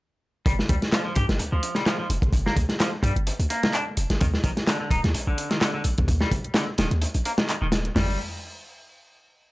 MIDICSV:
0, 0, Header, 1, 4, 480
1, 0, Start_track
1, 0, Key_signature, -2, "minor"
1, 0, Tempo, 468750
1, 469, Time_signature, 4, 2, 24, 8
1, 9746, End_track
2, 0, Start_track
2, 0, Title_t, "Clean electric guitar"
2, 0, Program_c, 0, 27
2, 472, Note_on_c, 0, 55, 97
2, 524, Note_off_c, 0, 55, 0
2, 710, Note_on_c, 0, 55, 76
2, 764, Note_off_c, 0, 55, 0
2, 945, Note_on_c, 0, 53, 99
2, 1037, Note_off_c, 0, 53, 0
2, 1076, Note_on_c, 0, 53, 75
2, 1153, Note_off_c, 0, 53, 0
2, 1190, Note_on_c, 0, 67, 80
2, 1280, Note_off_c, 0, 67, 0
2, 1559, Note_on_c, 0, 53, 78
2, 1786, Note_off_c, 0, 53, 0
2, 1801, Note_on_c, 0, 55, 75
2, 1875, Note_off_c, 0, 55, 0
2, 1909, Note_on_c, 0, 53, 105
2, 1999, Note_off_c, 0, 53, 0
2, 2041, Note_on_c, 0, 53, 77
2, 2115, Note_off_c, 0, 53, 0
2, 2520, Note_on_c, 0, 58, 75
2, 2595, Note_off_c, 0, 58, 0
2, 2866, Note_on_c, 0, 53, 107
2, 2958, Note_off_c, 0, 53, 0
2, 3103, Note_on_c, 0, 55, 102
2, 3196, Note_off_c, 0, 55, 0
2, 3586, Note_on_c, 0, 58, 76
2, 3816, Note_off_c, 0, 58, 0
2, 3827, Note_on_c, 0, 62, 84
2, 3918, Note_off_c, 0, 62, 0
2, 4306, Note_on_c, 0, 51, 101
2, 4362, Note_off_c, 0, 51, 0
2, 4548, Note_on_c, 0, 51, 78
2, 4602, Note_off_c, 0, 51, 0
2, 4786, Note_on_c, 0, 50, 104
2, 4878, Note_off_c, 0, 50, 0
2, 4920, Note_on_c, 0, 50, 77
2, 4995, Note_off_c, 0, 50, 0
2, 5027, Note_on_c, 0, 63, 83
2, 5118, Note_off_c, 0, 63, 0
2, 5400, Note_on_c, 0, 50, 81
2, 5627, Note_off_c, 0, 50, 0
2, 5639, Note_on_c, 0, 51, 77
2, 5714, Note_off_c, 0, 51, 0
2, 5746, Note_on_c, 0, 50, 106
2, 5838, Note_off_c, 0, 50, 0
2, 5879, Note_on_c, 0, 50, 82
2, 5954, Note_off_c, 0, 50, 0
2, 6360, Note_on_c, 0, 55, 78
2, 6435, Note_off_c, 0, 55, 0
2, 6706, Note_on_c, 0, 50, 104
2, 6798, Note_off_c, 0, 50, 0
2, 6953, Note_on_c, 0, 51, 100
2, 7041, Note_off_c, 0, 51, 0
2, 7431, Note_on_c, 0, 58, 75
2, 7484, Note_off_c, 0, 58, 0
2, 7564, Note_on_c, 0, 51, 75
2, 7661, Note_off_c, 0, 51, 0
2, 7673, Note_on_c, 0, 51, 89
2, 7725, Note_off_c, 0, 51, 0
2, 7801, Note_on_c, 0, 51, 107
2, 7846, Note_off_c, 0, 51, 0
2, 8149, Note_on_c, 0, 55, 91
2, 8372, Note_off_c, 0, 55, 0
2, 9746, End_track
3, 0, Start_track
3, 0, Title_t, "808-style bass"
3, 0, Program_c, 1, 38
3, 469, Note_on_c, 1, 31, 93
3, 636, Note_off_c, 1, 31, 0
3, 710, Note_on_c, 1, 38, 102
3, 797, Note_off_c, 1, 38, 0
3, 1189, Note_on_c, 1, 43, 93
3, 1276, Note_off_c, 1, 43, 0
3, 1321, Note_on_c, 1, 31, 96
3, 1426, Note_off_c, 1, 31, 0
3, 1432, Note_on_c, 1, 38, 45
3, 1535, Note_off_c, 1, 38, 0
3, 1561, Note_on_c, 1, 38, 90
3, 1633, Note_off_c, 1, 38, 0
3, 2149, Note_on_c, 1, 29, 87
3, 2236, Note_off_c, 1, 29, 0
3, 2273, Note_on_c, 1, 31, 90
3, 2349, Note_off_c, 1, 31, 0
3, 2382, Note_on_c, 1, 31, 96
3, 2553, Note_off_c, 1, 31, 0
3, 2626, Note_on_c, 1, 38, 102
3, 2715, Note_off_c, 1, 38, 0
3, 3100, Note_on_c, 1, 43, 96
3, 3192, Note_off_c, 1, 43, 0
3, 3236, Note_on_c, 1, 31, 97
3, 3390, Note_off_c, 1, 31, 0
3, 3476, Note_on_c, 1, 38, 89
3, 3551, Note_off_c, 1, 38, 0
3, 4069, Note_on_c, 1, 29, 89
3, 4156, Note_off_c, 1, 29, 0
3, 4199, Note_on_c, 1, 31, 89
3, 4272, Note_off_c, 1, 31, 0
3, 4315, Note_on_c, 1, 39, 98
3, 4479, Note_off_c, 1, 39, 0
3, 4544, Note_on_c, 1, 34, 98
3, 4634, Note_off_c, 1, 34, 0
3, 5023, Note_on_c, 1, 27, 92
3, 5113, Note_off_c, 1, 27, 0
3, 5163, Note_on_c, 1, 39, 100
3, 5268, Note_off_c, 1, 39, 0
3, 5274, Note_on_c, 1, 34, 44
3, 5376, Note_off_c, 1, 34, 0
3, 5399, Note_on_c, 1, 34, 90
3, 5472, Note_off_c, 1, 34, 0
3, 5988, Note_on_c, 1, 34, 84
3, 6076, Note_off_c, 1, 34, 0
3, 6127, Note_on_c, 1, 39, 88
3, 6196, Note_off_c, 1, 39, 0
3, 6224, Note_on_c, 1, 39, 97
3, 6394, Note_off_c, 1, 39, 0
3, 6466, Note_on_c, 1, 34, 107
3, 6555, Note_off_c, 1, 34, 0
3, 6948, Note_on_c, 1, 27, 94
3, 7036, Note_off_c, 1, 27, 0
3, 7079, Note_on_c, 1, 39, 94
3, 7232, Note_off_c, 1, 39, 0
3, 7319, Note_on_c, 1, 34, 89
3, 7392, Note_off_c, 1, 34, 0
3, 7800, Note_on_c, 1, 27, 87
3, 8091, Note_off_c, 1, 27, 0
3, 8146, Note_on_c, 1, 31, 93
3, 8370, Note_off_c, 1, 31, 0
3, 9746, End_track
4, 0, Start_track
4, 0, Title_t, "Drums"
4, 469, Note_on_c, 9, 36, 116
4, 471, Note_on_c, 9, 42, 34
4, 571, Note_off_c, 9, 36, 0
4, 573, Note_off_c, 9, 42, 0
4, 605, Note_on_c, 9, 38, 58
4, 707, Note_off_c, 9, 38, 0
4, 709, Note_on_c, 9, 42, 80
4, 710, Note_on_c, 9, 36, 113
4, 812, Note_off_c, 9, 42, 0
4, 813, Note_off_c, 9, 36, 0
4, 842, Note_on_c, 9, 42, 43
4, 843, Note_on_c, 9, 38, 49
4, 944, Note_off_c, 9, 42, 0
4, 946, Note_off_c, 9, 38, 0
4, 947, Note_on_c, 9, 38, 123
4, 948, Note_on_c, 9, 39, 109
4, 948, Note_on_c, 9, 42, 32
4, 951, Note_off_c, 9, 42, 0
4, 951, Note_on_c, 9, 42, 93
4, 1050, Note_off_c, 9, 38, 0
4, 1051, Note_off_c, 9, 39, 0
4, 1053, Note_off_c, 9, 42, 0
4, 1181, Note_on_c, 9, 42, 67
4, 1189, Note_off_c, 9, 42, 0
4, 1189, Note_on_c, 9, 42, 77
4, 1191, Note_on_c, 9, 36, 97
4, 1291, Note_off_c, 9, 42, 0
4, 1293, Note_off_c, 9, 36, 0
4, 1322, Note_on_c, 9, 38, 62
4, 1323, Note_on_c, 9, 42, 44
4, 1424, Note_off_c, 9, 38, 0
4, 1426, Note_off_c, 9, 42, 0
4, 1427, Note_on_c, 9, 42, 97
4, 1429, Note_off_c, 9, 42, 0
4, 1429, Note_on_c, 9, 42, 35
4, 1531, Note_off_c, 9, 42, 0
4, 1668, Note_on_c, 9, 42, 80
4, 1770, Note_off_c, 9, 42, 0
4, 1790, Note_on_c, 9, 38, 47
4, 1803, Note_on_c, 9, 42, 46
4, 1893, Note_off_c, 9, 38, 0
4, 1905, Note_off_c, 9, 42, 0
4, 1908, Note_on_c, 9, 38, 108
4, 1908, Note_on_c, 9, 42, 89
4, 1911, Note_off_c, 9, 42, 0
4, 1911, Note_on_c, 9, 39, 105
4, 1911, Note_on_c, 9, 42, 33
4, 2010, Note_off_c, 9, 38, 0
4, 2013, Note_off_c, 9, 39, 0
4, 2013, Note_off_c, 9, 42, 0
4, 2150, Note_on_c, 9, 42, 86
4, 2154, Note_off_c, 9, 42, 0
4, 2154, Note_on_c, 9, 42, 72
4, 2256, Note_off_c, 9, 42, 0
4, 2274, Note_on_c, 9, 36, 97
4, 2282, Note_on_c, 9, 42, 46
4, 2377, Note_off_c, 9, 36, 0
4, 2382, Note_on_c, 9, 36, 117
4, 2385, Note_off_c, 9, 42, 0
4, 2388, Note_on_c, 9, 42, 34
4, 2390, Note_off_c, 9, 42, 0
4, 2390, Note_on_c, 9, 42, 93
4, 2484, Note_off_c, 9, 36, 0
4, 2492, Note_off_c, 9, 42, 0
4, 2523, Note_on_c, 9, 38, 61
4, 2626, Note_off_c, 9, 38, 0
4, 2626, Note_on_c, 9, 42, 71
4, 2627, Note_on_c, 9, 36, 93
4, 2628, Note_off_c, 9, 42, 0
4, 2628, Note_on_c, 9, 42, 75
4, 2729, Note_off_c, 9, 36, 0
4, 2730, Note_off_c, 9, 42, 0
4, 2754, Note_on_c, 9, 38, 51
4, 2760, Note_on_c, 9, 42, 43
4, 2856, Note_off_c, 9, 38, 0
4, 2863, Note_off_c, 9, 42, 0
4, 2869, Note_on_c, 9, 39, 112
4, 2869, Note_on_c, 9, 42, 89
4, 2871, Note_on_c, 9, 38, 115
4, 2971, Note_off_c, 9, 39, 0
4, 2972, Note_off_c, 9, 42, 0
4, 2973, Note_off_c, 9, 38, 0
4, 3100, Note_on_c, 9, 36, 88
4, 3108, Note_on_c, 9, 42, 69
4, 3109, Note_off_c, 9, 42, 0
4, 3109, Note_on_c, 9, 42, 81
4, 3202, Note_off_c, 9, 36, 0
4, 3211, Note_off_c, 9, 42, 0
4, 3240, Note_on_c, 9, 42, 46
4, 3342, Note_off_c, 9, 42, 0
4, 3347, Note_on_c, 9, 42, 86
4, 3348, Note_off_c, 9, 42, 0
4, 3348, Note_on_c, 9, 42, 36
4, 3450, Note_off_c, 9, 42, 0
4, 3477, Note_on_c, 9, 42, 45
4, 3579, Note_off_c, 9, 42, 0
4, 3586, Note_on_c, 9, 42, 70
4, 3587, Note_off_c, 9, 42, 0
4, 3587, Note_on_c, 9, 42, 76
4, 3689, Note_off_c, 9, 42, 0
4, 3720, Note_on_c, 9, 42, 46
4, 3723, Note_on_c, 9, 38, 111
4, 3820, Note_off_c, 9, 42, 0
4, 3820, Note_on_c, 9, 42, 92
4, 3825, Note_off_c, 9, 38, 0
4, 3826, Note_off_c, 9, 42, 0
4, 3826, Note_on_c, 9, 39, 110
4, 3826, Note_on_c, 9, 42, 33
4, 3929, Note_off_c, 9, 39, 0
4, 3929, Note_off_c, 9, 42, 0
4, 4065, Note_on_c, 9, 42, 68
4, 4066, Note_off_c, 9, 42, 0
4, 4066, Note_on_c, 9, 42, 84
4, 4168, Note_off_c, 9, 42, 0
4, 4199, Note_on_c, 9, 42, 46
4, 4200, Note_on_c, 9, 38, 41
4, 4301, Note_off_c, 9, 42, 0
4, 4302, Note_off_c, 9, 38, 0
4, 4308, Note_on_c, 9, 42, 35
4, 4309, Note_off_c, 9, 42, 0
4, 4309, Note_on_c, 9, 42, 95
4, 4314, Note_on_c, 9, 36, 105
4, 4412, Note_off_c, 9, 42, 0
4, 4416, Note_off_c, 9, 36, 0
4, 4440, Note_on_c, 9, 38, 50
4, 4543, Note_off_c, 9, 38, 0
4, 4543, Note_on_c, 9, 42, 73
4, 4544, Note_on_c, 9, 36, 104
4, 4548, Note_off_c, 9, 42, 0
4, 4548, Note_on_c, 9, 42, 74
4, 4647, Note_off_c, 9, 36, 0
4, 4650, Note_off_c, 9, 42, 0
4, 4679, Note_on_c, 9, 38, 51
4, 4681, Note_on_c, 9, 42, 42
4, 4781, Note_off_c, 9, 38, 0
4, 4783, Note_off_c, 9, 42, 0
4, 4785, Note_on_c, 9, 38, 111
4, 4787, Note_on_c, 9, 42, 94
4, 4789, Note_off_c, 9, 42, 0
4, 4789, Note_on_c, 9, 39, 116
4, 4789, Note_on_c, 9, 42, 34
4, 4888, Note_off_c, 9, 38, 0
4, 4892, Note_off_c, 9, 39, 0
4, 4892, Note_off_c, 9, 42, 0
4, 5024, Note_on_c, 9, 36, 91
4, 5027, Note_on_c, 9, 42, 64
4, 5029, Note_off_c, 9, 42, 0
4, 5029, Note_on_c, 9, 42, 76
4, 5126, Note_off_c, 9, 36, 0
4, 5132, Note_off_c, 9, 42, 0
4, 5162, Note_on_c, 9, 42, 46
4, 5163, Note_on_c, 9, 38, 54
4, 5264, Note_off_c, 9, 42, 0
4, 5265, Note_off_c, 9, 38, 0
4, 5268, Note_on_c, 9, 42, 98
4, 5271, Note_off_c, 9, 42, 0
4, 5271, Note_on_c, 9, 42, 34
4, 5373, Note_off_c, 9, 42, 0
4, 5508, Note_on_c, 9, 42, 64
4, 5511, Note_off_c, 9, 42, 0
4, 5511, Note_on_c, 9, 42, 78
4, 5614, Note_off_c, 9, 42, 0
4, 5640, Note_on_c, 9, 38, 53
4, 5640, Note_on_c, 9, 42, 44
4, 5742, Note_off_c, 9, 38, 0
4, 5742, Note_off_c, 9, 42, 0
4, 5749, Note_on_c, 9, 38, 118
4, 5749, Note_on_c, 9, 39, 118
4, 5749, Note_on_c, 9, 42, 33
4, 5751, Note_off_c, 9, 42, 0
4, 5751, Note_on_c, 9, 42, 82
4, 5851, Note_off_c, 9, 38, 0
4, 5851, Note_off_c, 9, 39, 0
4, 5854, Note_off_c, 9, 42, 0
4, 5981, Note_on_c, 9, 42, 69
4, 5989, Note_off_c, 9, 42, 0
4, 5989, Note_on_c, 9, 42, 85
4, 6092, Note_off_c, 9, 42, 0
4, 6121, Note_on_c, 9, 42, 43
4, 6128, Note_on_c, 9, 36, 93
4, 6224, Note_off_c, 9, 42, 0
4, 6226, Note_off_c, 9, 36, 0
4, 6226, Note_on_c, 9, 36, 112
4, 6227, Note_on_c, 9, 42, 92
4, 6231, Note_off_c, 9, 42, 0
4, 6231, Note_on_c, 9, 42, 32
4, 6328, Note_off_c, 9, 36, 0
4, 6333, Note_off_c, 9, 42, 0
4, 6355, Note_on_c, 9, 38, 62
4, 6457, Note_off_c, 9, 38, 0
4, 6466, Note_on_c, 9, 36, 93
4, 6467, Note_on_c, 9, 42, 72
4, 6470, Note_off_c, 9, 42, 0
4, 6470, Note_on_c, 9, 42, 76
4, 6569, Note_off_c, 9, 36, 0
4, 6573, Note_off_c, 9, 42, 0
4, 6599, Note_on_c, 9, 42, 43
4, 6700, Note_on_c, 9, 38, 127
4, 6702, Note_off_c, 9, 42, 0
4, 6706, Note_on_c, 9, 39, 114
4, 6706, Note_on_c, 9, 42, 32
4, 6708, Note_off_c, 9, 42, 0
4, 6708, Note_on_c, 9, 42, 81
4, 6802, Note_off_c, 9, 38, 0
4, 6808, Note_off_c, 9, 39, 0
4, 6811, Note_off_c, 9, 42, 0
4, 6942, Note_on_c, 9, 42, 78
4, 6946, Note_off_c, 9, 42, 0
4, 6946, Note_on_c, 9, 42, 77
4, 6950, Note_on_c, 9, 38, 99
4, 7049, Note_off_c, 9, 42, 0
4, 7052, Note_off_c, 9, 38, 0
4, 7079, Note_on_c, 9, 42, 42
4, 7181, Note_off_c, 9, 42, 0
4, 7184, Note_on_c, 9, 42, 100
4, 7189, Note_off_c, 9, 42, 0
4, 7189, Note_on_c, 9, 42, 34
4, 7291, Note_off_c, 9, 42, 0
4, 7315, Note_on_c, 9, 42, 47
4, 7417, Note_off_c, 9, 42, 0
4, 7429, Note_on_c, 9, 42, 77
4, 7432, Note_off_c, 9, 42, 0
4, 7432, Note_on_c, 9, 42, 75
4, 7534, Note_off_c, 9, 42, 0
4, 7556, Note_on_c, 9, 38, 116
4, 7559, Note_on_c, 9, 42, 41
4, 7658, Note_off_c, 9, 38, 0
4, 7662, Note_off_c, 9, 42, 0
4, 7666, Note_on_c, 9, 42, 85
4, 7669, Note_off_c, 9, 42, 0
4, 7669, Note_on_c, 9, 39, 107
4, 7669, Note_on_c, 9, 42, 31
4, 7772, Note_off_c, 9, 39, 0
4, 7772, Note_off_c, 9, 42, 0
4, 7904, Note_on_c, 9, 38, 106
4, 7908, Note_on_c, 9, 42, 76
4, 7909, Note_off_c, 9, 42, 0
4, 7909, Note_on_c, 9, 42, 75
4, 8006, Note_off_c, 9, 38, 0
4, 8012, Note_off_c, 9, 42, 0
4, 8038, Note_on_c, 9, 42, 39
4, 8141, Note_off_c, 9, 42, 0
4, 8150, Note_on_c, 9, 38, 108
4, 8150, Note_on_c, 9, 43, 107
4, 8150, Note_on_c, 9, 46, 87
4, 8252, Note_off_c, 9, 38, 0
4, 8252, Note_off_c, 9, 43, 0
4, 8252, Note_off_c, 9, 46, 0
4, 9746, End_track
0, 0, End_of_file